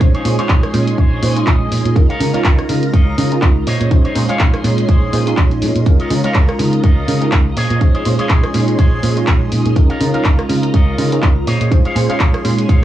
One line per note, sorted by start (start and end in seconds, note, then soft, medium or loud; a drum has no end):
0.00 0.11 A#1 loud
0.00 0.22 G#3 medium
0.00 1.94 C#4 medium
0.00 0.22 C#4 medium
0.00 0.22 D#4 medium
0.00 0.23 F4 medium
0.00 1.94 G#4 medium
0.00 0.23 C5 medium
0.00 3.63 D#5 medium
0.00 1.94 C6 medium
0.00 kick loud
0.00 closed hi-hat medium
0.14 0.25 D#4 medium
0.14 0.25 G#4 medium
0.14 0.25 C5 medium
0.14 0.25 C#5 loud
0.14 closed hi-hat soft
0.25 0.36 A#2 loud
0.25 0.35 G#3 medium
0.25 0.35 C#4 medium
0.25 0.36 D#4 medium
0.25 0.36 F4 medium
0.25 0.36 C5 loud
0.25 open hi-hat loud
0.39 0.71 G#3 medium
0.39 0.71 C#4 medium
0.39 0.71 D#4 medium
0.39 0.69 D#4 medium
0.39 0.72 F4 medium
0.39 0.69 G#4 medium
0.39 0.69 C5 medium
0.39 0.69 C#5 loud
0.39 0.72 C6 loud
0.39 muted fingered electric bass stroke soft
0.39 closed hi-hat medium
0.49 0.60 A#1 loud
0.49 kick loud
0.49 clap loud
0.49 closed hi-hat medium
0.63 cross-stick medium
0.63 closed hi-hat soft
0.73 0.93 A#2 loud
0.73 1.20 G#3 medium
0.73 1.20 C#4 medium
0.73 1.20 D#4 medium
0.73 1.20 F4 medium
0.73 1.20 C6 loud
0.73 open hi-hat medium
0.88 closed hi-hat medium
0.98 1.18 A#1 medium
0.98 1.36 D#4 medium
0.98 1.37 G#4 medium
0.98 1.37 C5 medium
0.98 1.37 C#5 medium
0.98 kick loud
0.98 closed hi-hat medium
1.22 1.42 A#2 loud
1.22 1.33 G#3 medium
1.22 1.33 C#4 medium
1.22 1.33 D#4 medium
1.22 1.33 F4 medium
1.22 1.33 C5 medium
1.22 open hi-hat loud
1.36 1.93 G#3 medium
1.36 1.93 C#4 medium
1.36 1.93 D#4 medium
1.36 1.94 F4 medium
1.36 1.94 C6 loud
1.36 closed hi-hat medium
1.47 1.67 A#1 medium
1.47 1.70 D#5 medium
1.47 kick loud
1.47 clap loud
1.47 closed hi-hat medium
1.71 1.82 A#2 medium
1.71 muted clean electric guitar stroke soft
1.71 open hi-hat loud
1.85 1.93 A#2 medium
1.85 closed hi-hat medium
1.95 2.07 C#2 loud
1.95 2.17 G#3 medium
1.95 2.18 C#4 medium
1.95 2.18 D#4 medium
1.95 3.65 F4 medium
1.95 2.18 F4 medium
1.95 2.18 A#4 medium
1.95 3.65 A#5 loud
1.95 muted clean electric guitar stroke loud
1.95 kick loud
1.95 closed hi-hat medium
2.10 2.20 F4 medium
2.10 2.20 A#4 medium
2.10 2.20 C#5 medium
2.10 2.20 F5 medium
2.10 closed hi-hat soft
2.20 2.31 C#3 loud
2.20 2.30 G#3 medium
2.20 2.31 C#4 medium
2.20 2.31 D#4 medium
2.20 2.31 F4 medium
2.20 2.31 A#4 loud
2.20 open hi-hat loud
2.34 2.66 G#3 medium
2.34 2.66 C#4 medium
2.34 2.67 D#4 medium
2.34 2.67 F4 medium
2.34 2.64 F4 medium
2.34 2.67 A#4 loud
2.34 2.64 A#4 medium
2.34 2.64 C#5 medium
2.34 2.64 F5 medium
2.34 muted fingered electric bass stroke soft
2.34 closed hi-hat medium
2.44 2.55 C#2 loud
2.44 kick loud
2.44 clap loud
2.44 closed hi-hat medium
2.59 cross-stick medium
2.59 closed hi-hat soft
2.68 2.89 C#3 loud
2.68 3.15 G#3 medium
2.68 3.15 C#4 medium
2.68 3.15 D#4 medium
2.68 3.15 F4 medium
2.68 3.15 A#4 loud
2.68 open hi-hat loud
2.83 closed hi-hat medium
2.93 3.13 C#2 medium
2.93 3.32 F4 medium
2.93 3.32 A#4 medium
2.93 3.32 C#5 medium
2.93 3.32 D#5 medium
2.93 kick loud
2.93 closed hi-hat medium
3.17 3.38 C#3 loud
3.17 3.28 G#3 medium
3.17 3.28 C#4 medium
3.17 3.28 D#4 medium
3.17 3.28 F4 medium
3.17 3.28 A#4 medium
3.17 open hi-hat loud
3.31 3.65 G#3 medium
3.31 3.65 C#4 medium
3.31 3.65 D#4 medium
3.31 3.65 F4 medium
3.31 3.66 A#4 loud
3.31 closed hi-hat medium
3.42 3.62 C#2 medium
3.42 kick loud
3.42 clap loud
3.42 closed hi-hat medium
3.66 3.77 A#2 medium
3.66 5.84 C#4 medium
3.66 5.84 G#4 medium
3.66 3.97 G#4 medium
3.66 3.97 C5 medium
3.66 3.97 C#5 medium
3.66 12.84 D#5 medium
3.66 3.97 D#5 loud
3.66 5.84 C6 medium
3.66 open hi-hat loud
3.80 3.89 A#2 medium
3.80 closed hi-hat medium
3.90 4.02 A#1 loud
3.90 4.13 G#3 medium
3.90 4.13 C#4 medium
3.90 4.13 D#4 medium
3.90 4.13 F4 medium
3.90 4.13 C5 medium
3.90 kick loud
3.90 closed hi-hat medium
4.04 4.15 G#4 medium
4.04 4.15 C5 medium
4.04 4.15 C#5 medium
4.04 4.16 D#5 medium
4.04 closed hi-hat soft
4.15 4.26 A#2 loud
4.15 4.26 G#3 medium
4.15 4.26 C#4 medium
4.15 4.26 D#4 medium
4.15 4.26 F4 medium
4.15 4.26 C5 medium
4.15 open hi-hat loud
4.28 4.61 G#3 medium
4.28 4.61 C#4 medium
4.28 4.62 D#4 medium
4.28 4.62 F4 medium
4.28 4.59 G#4 medium
4.28 4.59 C5 medium
4.28 4.59 C#5 medium
4.28 4.59 F5 loud
4.28 4.62 C6 loud
4.28 muted fingered electric bass stroke soft
4.28 closed hi-hat soft
4.39 4.50 A#1 medium
4.39 kick loud
4.39 clap loud
4.39 closed hi-hat medium
4.54 cross-stick medium
4.54 closed hi-hat soft
4.64 4.84 A#2 loud
4.64 5.10 G#3 medium
4.64 5.10 C#4 medium
4.64 5.10 D#4 medium
4.64 5.11 F4 medium
4.64 5.11 C6 loud
4.64 open hi-hat loud
4.78 closed hi-hat medium
4.88 5.08 A#1 medium
4.88 5.27 G#4 medium
4.88 5.27 C5 medium
4.88 5.27 C#5 medium
4.88 5.27 D#5 medium
4.88 kick loud
4.88 closed hi-hat medium
5.13 5.32 A#2 medium
5.13 5.23 G#3 medium
5.13 5.23 C#4 medium
5.13 5.23 D#4 medium
5.13 5.24 F4 medium
5.13 5.24 C5 medium
5.13 open hi-hat loud
5.26 5.83 G#3 medium
5.26 5.83 C#4 medium
5.26 5.84 D#4 medium
5.26 5.84 F4 medium
5.26 5.84 C6 loud
5.26 closed hi-hat medium
5.37 5.63 A#1 loud
5.37 kick loud
5.37 clap loud
5.37 closed hi-hat medium
5.51 closed hi-hat soft
5.62 5.72 A#2 medium
5.62 muted clean electric guitar stroke soft
5.62 open hi-hat loud
5.75 5.84 A#2 medium
5.75 closed hi-hat medium
5.86 5.97 C#2 loud
5.86 6.08 G#3 medium
5.86 6.08 C#4 medium
5.86 6.08 D#4 medium
5.86 7.55 F4 medium
5.86 6.08 F4 medium
5.86 6.08 A#4 medium
5.86 7.55 A#5 medium
5.86 muted clean electric guitar stroke loud
5.86 kick loud
5.86 closed hi-hat medium
6.00 6.10 F4 medium
6.00 6.10 A#4 medium
6.00 6.11 C#5 medium
6.00 6.11 D#5 loud
6.00 closed hi-hat soft
6.10 6.21 C#3 loud
6.10 6.21 G#3 medium
6.10 6.21 C#4 medium
6.10 6.21 D#4 medium
6.10 6.21 F4 medium
6.10 6.21 A#4 medium
6.10 open hi-hat loud
6.24 6.57 G#3 medium
6.24 6.57 C#4 medium
6.24 6.57 D#4 medium
6.24 6.57 F4 medium
6.24 6.54 F4 medium
6.24 6.54 A#4 medium
6.24 6.57 A#4 loud
6.24 6.54 C#5 medium
6.24 6.54 F5 loud
6.24 muted fingered electric bass stroke soft
6.24 closed hi-hat soft
6.34 6.46 C#2 loud
6.34 kick loud
6.34 clap loud
6.34 closed hi-hat medium
6.49 cross-stick medium
6.49 closed hi-hat soft
6.59 6.79 C#3 medium
6.59 7.05 G#3 medium
6.59 7.05 C#4 medium
6.59 7.05 D#4 medium
6.59 7.05 F4 medium
6.59 7.06 A#4 loud
6.59 open hi-hat medium
6.73 closed hi-hat medium
6.83 7.03 C#2 medium
6.83 7.22 F4 medium
6.83 7.22 A#4 medium
6.83 7.22 C#5 medium
6.83 7.22 D#5 medium
6.83 kick loud
6.83 closed hi-hat medium
7.08 7.28 C#3 loud
7.08 7.18 G#3 medium
7.08 7.18 C#4 medium
7.08 7.19 D#4 medium
7.08 7.19 F4 medium
7.08 7.19 A#4 medium
7.08 open hi-hat loud
7.21 7.55 G#3 medium
7.21 7.55 C#4 medium
7.21 7.55 D#4 medium
7.21 7.55 F4 medium
7.21 7.56 A#4 loud
7.21 closed hi-hat medium
7.32 7.52 C#2 medium
7.32 kick loud
7.32 clap loud
7.32 closed hi-hat medium
7.57 7.67 A#2 medium
7.57 9.74 C#4 medium
7.57 9.74 G#4 medium
7.57 7.87 G#4 medium
7.57 7.87 C5 medium
7.57 7.87 C#5 medium
7.57 7.87 D#5 loud
7.57 9.74 C6 medium
7.57 open hi-hat loud
7.70 7.79 A#2 medium
7.70 closed hi-hat medium
7.81 7.92 A#1 loud
7.81 8.03 G#3 medium
7.81 8.03 C#4 medium
7.81 8.03 D#4 medium
7.81 8.03 F4 medium
7.81 8.03 C5 medium
7.81 kick loud
7.81 closed hi-hat medium
7.95 8.06 G#4 medium
7.95 8.06 C5 medium
7.95 8.06 C#5 medium
7.95 8.06 D#5 loud
7.95 closed hi-hat soft
8.05 8.16 A#2 loud
8.05 8.16 G#3 medium
8.05 8.16 C#4 medium
8.05 8.16 D#4 medium
8.05 8.16 F4 medium
8.05 8.16 C5 loud
8.05 open hi-hat loud
8.19 8.52 G#3 medium
8.19 8.52 C#4 medium
8.19 8.52 D#4 medium
8.19 8.52 F4 medium
8.19 8.49 G#4 medium
8.19 8.49 C5 medium
8.19 8.49 C#5 medium
8.19 8.49 D#5 medium
8.19 8.52 C6 medium
8.19 muted fingered electric bass stroke soft
8.19 closed hi-hat soft
8.29 8.41 A#1 loud
8.29 kick loud
8.29 clap loud
8.29 closed hi-hat medium
8.44 cross-stick medium
8.44 closed hi-hat soft
8.54 8.74 A#2 loud
8.54 9.00 G#3 medium
8.54 9.00 C#4 medium
8.54 9.01 D#4 medium
8.54 9.01 F4 medium
8.54 9.01 C6 loud
8.54 open hi-hat medium
8.68 closed hi-hat medium
8.78 8.98 A#1 medium
8.78 9.17 G#4 medium
8.78 9.17 C5 medium
8.78 9.17 C#5 medium
8.78 9.17 D#5 medium
8.78 kick loud
8.78 closed hi-hat medium
9.03 9.23 A#2 loud
9.03 9.13 G#3 medium
9.03 9.13 C#4 medium
9.03 9.14 D#4 medium
9.03 9.14 F4 medium
9.03 9.14 C5 medium
9.03 open hi-hat loud
9.16 9.73 G#3 medium
9.16 9.73 C#4 medium
9.16 9.74 D#4 medium
9.16 9.74 F4 medium
9.16 9.74 C6 loud
9.16 closed hi-hat medium
9.27 9.47 A#1 medium
9.27 kick loud
9.27 clap loud
9.27 closed hi-hat medium
9.52 9.63 A#2 medium
9.52 muted clean electric guitar stroke soft
9.52 open hi-hat medium
9.66 9.74 A#2 medium
9.66 closed hi-hat medium
9.76 9.87 C#2 loud
9.76 9.98 G#3 medium
9.76 9.98 C#4 medium
9.76 9.98 D#4 medium
9.76 11.45 F4 medium
9.76 9.98 F4 medium
9.76 9.98 A#4 medium
9.76 11.45 A#5 loud
9.76 muted clean electric guitar stroke loud
9.76 kick loud
9.76 closed hi-hat medium
9.90 10.01 F4 medium
9.90 10.01 A#4 medium
9.90 10.01 C#5 medium
9.90 10.01 F5 loud
9.90 closed hi-hat soft
10.00 10.11 C#3 loud
10.00 10.11 G#3 medium
10.00 10.11 C#4 medium
10.00 10.11 D#4 medium
10.00 10.11 F4 medium
10.00 10.11 A#4 loud
10.00 open hi-hat loud
10.14 10.47 G#3 medium
10.14 10.47 C#4 medium
10.14 10.47 D#4 medium
10.14 10.47 F4 medium
10.14 10.44 F4 medium
10.14 10.47 A#4 loud
10.14 10.44 A#4 medium
10.14 10.44 C#5 medium
10.14 10.44 F5 loud
10.14 muted fingered electric bass stroke soft
10.14 closed hi-hat medium
10.25 10.36 C#2 loud
10.25 kick loud
10.25 clap loud
10.25 closed hi-hat medium
10.39 cross-stick medium
10.39 closed hi-hat soft
10.49 10.69 C#3 medium
10.49 10.95 G#3 medium
10.49 10.95 C#4 medium
10.49 10.96 D#4 medium
10.49 10.96 F4 medium
10.49 10.96 A#4 loud
10.49 open hi-hat medium
10.63 closed hi-hat medium
10.73 10.94 C#2 medium
10.73 11.12 F4 medium
10.73 11.12 A#4 medium
10.73 11.12 C#5 medium
10.73 11.12 D#5 medium
10.73 kick loud
10.73 closed hi-hat medium
10.98 11.18 C#3 loud
10.98 11.08 G#3 medium
10.98 11.09 C#4 medium
10.98 11.09 D#4 medium
10.98 11.09 F4 medium
10.98 11.09 A#4 medium
10.98 open hi-hat loud
11.12 11.46 G#3 medium
11.12 11.46 C#4 medium
11.12 11.46 D#4 medium
11.12 11.46 F4 medium
11.12 11.46 A#4 loud
11.12 closed hi-hat medium
11.22 11.42 C#2 medium
11.22 kick loud
11.22 clap loud
11.22 closed hi-hat medium
11.47 11.58 A#2 medium
11.47 12.84 C#4 medium
11.47 12.84 G#4 medium
11.47 11.77 G#4 medium
11.47 11.77 C5 medium
11.47 11.77 C#5 medium
11.47 11.77 D#5 medium
11.47 12.84 C6 medium
11.47 open hi-hat medium
11.61 11.69 A#2 medium
11.61 closed hi-hat medium
11.71 11.82 A#1 loud
11.71 11.93 G#3 medium
11.71 11.93 C#4 medium
11.71 11.93 D#4 medium
11.71 11.93 F4 medium
11.71 11.93 C5 medium
11.71 kick loud
11.71 closed hi-hat medium
11.85 11.96 G#4 medium
11.85 11.96 C5 medium
11.85 11.96 C#5 medium
11.85 11.96 F5 loud
11.85 closed hi-hat soft
11.95 12.06 A#2 loud
11.95 12.06 G#3 medium
11.95 12.06 C#4 medium
11.95 12.06 D#4 medium
11.95 12.06 F4 medium
11.95 12.07 C5 loud
11.95 open hi-hat loud
12.09 12.42 G#3 medium
12.09 12.42 C#4 medium
12.09 12.42 D#4 medium
12.09 12.42 F4 medium
12.09 12.39 G#4 medium
12.09 12.39 C5 medium
12.09 12.39 C#5 medium
12.09 12.39 F5 medium
12.09 12.42 C6 loud
12.09 muted fingered electric bass stroke soft
12.09 closed hi-hat medium
12.20 12.31 A#1 loud
12.20 kick loud
12.20 clap loud
12.20 closed hi-hat medium
12.34 cross-stick medium
12.34 closed hi-hat soft
12.44 12.64 A#2 medium
12.44 12.84 G#3 medium
12.44 12.84 C#4 medium
12.44 12.84 D#4 medium
12.44 12.84 F4 medium
12.44 12.84 C6 loud
12.44 open hi-hat medium
12.59 closed hi-hat medium
12.69 12.84 A#1 medium
12.69 12.84 G#4 medium
12.69 12.84 C5 medium
12.69 12.84 C#5 medium
12.69 12.84 F5 medium
12.69 kick loud
12.69 closed hi-hat medium